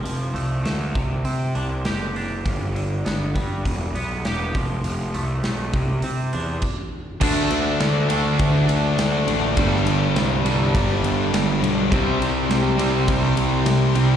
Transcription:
<<
  \new Staff \with { instrumentName = "Tonewheel organ" } { \time 4/4 \key c \major \tempo 4 = 102 << { r1 | r1 | r1 | \key d \mixolydian <fis' a' fis''>1 |
<b' g''>1 | <g' c'' g''>1 | } \\ { r1 | r1 | r1 | d'1~ |
d'1~ | d'1 | } >> }
  \new Staff \with { instrumentName = "Clean electric guitar" } { \time 4/4 \key c \major f8 a8 a8 c8 c'8 d'8 g'8 d'8 | g,8 d8 b8 g8 e,8 b8 g'8 f8 | f8 a8 a8 c8 c'8 d'8 r4 | \key d \mixolydian r1 |
r1 | r1 | }
  \new Staff \with { instrumentName = "Distorted electric guitar" } { \clef bass \time 4/4 \key c \major r1 | r1 | r1 | \key d \mixolydian <d a d'>2.~ <d a d'>8 <d a d'>8 |
<g, d g>2.~ <g, d g>8 <g, d g>8 | <c g c'>2.~ <c g c'>8 <c g c'>8 | }
  \new Staff \with { instrumentName = "Overdriven electric guitar" } { \clef bass \time 4/4 \key c \major r1 | r1 | r1 | \key d \mixolydian <d a d'>4. <d a d'>2~ <d a d'>8 |
<g, d g>4. <g, d g>2~ <g, d g>8 | <c g c'>4. <c g c'>2~ <c g c'>8 | }
  \new Staff \with { instrumentName = "Picked electric bass" } { \clef bass \time 4/4 \key c \major f,,8 c,8 d,8 c,8 c8 c,8 fis,,4 | g,,4 g,,8 g,8 e,,8 b,,8 e,,8 f,,8 | f,,8 c,8 b,,8 c,8 c8 e,8 r4 | \key d \mixolydian d,8 d,8 d,8 d,8 d,8 d,8 d,8 a,,8 |
g,,8 g,,8 c,8 c,8 g,,8 g,,8 g,,8 b,,8 | c,8 c,8 c,8 c,8 c,8 c,8 c,8 c,8 | }
  \new DrumStaff \with { instrumentName = "Drums" } \drummode { \time 4/4 hho8 hho8 <hho sn>8 <hho bd>8 hho8 hho8 <hho sn>8 hho8 | <hho bd>8 hho8 <hho sn>8 <hho bd>8 <hho bd>8 hho8 <hho sn>8 <hho bd>8 | hho8 hho8 <hho sn>8 <hho bd>8 hho8 hho8 <cymc bd>4 | <cymc bd>8 cymr8 <cymr sn>8 cymr8 <bd cymr>8 cymr8 <cymr sn>8 cymr8 |
<bd cymr>8 cymr8 <cymr sn>8 cymr8 <bd cymr>8 cymr8 <cymr sn>8 cymr8 | <bd cymr>8 cymr8 <cymr sn>8 cymr8 <bd cymr>8 cymr8 <cymr sn>8 cymr8 | }
>>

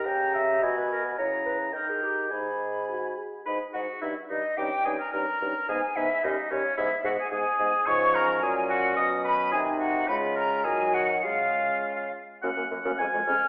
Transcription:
<<
  \new Staff \with { instrumentName = "Flute" } { \time 2/4 \key gis \minor \tempo 4 = 108 ais''4 b''4 | ais''4 ais''4 | b''4. r8 | b''8 fis''8 e''8 dis''8 |
g''8 gis''16 ais''16 ais''4 | gis''8 e''8 dis''8 cis''8 | e''8 fis''16 gis''16 gis''4 | \key fis \major cis'''8 ais''8 gis''8 fis''8 |
dis'''8 b''8 gis''8 ges''8 | b''8 ais''8 gis''8 fis''8 | eis''4. r8 | r4 gis''8 eis'''8 | }
  \new Staff \with { instrumentName = "Oboe" } { \time 2/4 \key gis \minor ais''4 gis''4 | ais''4 g''4 | gis''4. r8 | b'8 fis'8 e'8 dis'8 |
g'8 gis'16 ais'16 ais'4 | gis'8 e'8 dis'8 cis'8 | e'8 fis'16 gis'16 gis'4 | \key fis \major cis''8 ais'8 gis'8 fis'8 |
dis''8 b'8 gis'8 ges'8 | b'8 ais'8 gis'8 fis'8 | eis'4. r8 | fis''4 gis''4 | }
  \new Staff \with { instrumentName = "Clarinet" } { \time 2/4 \key gis \minor g''8 e''8 dis''16 b'16 ais'16 b'16 | cis''8 b'8 ais'16 gis'16 g'8 | gis'4 r4 | gis'8 gis'8 dis'8 dis'8 |
dis'8 dis'8 dis'8 dis'8 | dis'8 dis'8 cis'8 cis'8 | b8 b8 b8 b8 | \key fis \major cis'2~ |
cis'4 ees'4 | eis'4 fis'4 | cis'4. r8 | cis'16 cis'16 ais16 cis'16 cis'16 gis16 cis'16 r16 | }
  \new Staff \with { instrumentName = "French horn" } { \time 2/4 \key gis \minor g'4 fis'4 | e'4 dis'4 | dis'4 fis'8 gis'8 | dis'8 dis'8 dis'8 dis'8 |
cis'8 cis'8 cis'8 cis'8 | b8 b8 g8 g8 | gis8 gis8 gis8 gis8 | \key fis \major eis4 fis4 |
fis4 ees4 | gis4 fis4 | gis4. r8 | ais16 ais16 fis16 ais16 gis16 eis16 gis16 r16 | }
  \new Staff \with { instrumentName = "Bassoon" } { \clef bass \time 2/4 \key gis \minor cis4 b,4 | cis4 dis4 | gis,4. r8 | gis,8 gis,8 g,8 g,8 |
g,8 g,8 g,8 g,8 | gis,8 gis,8 dis,8 dis,8 | gis,8 gis,8 gis,8 gis,8 | \key fis \major gis,4 ais,4 |
b,4 c4 | cis4 dis4 | cis4. r8 | fis,16 fis,16 fis,16 fis,16 eis,16 eis,16 eis,16 r16 | }
>>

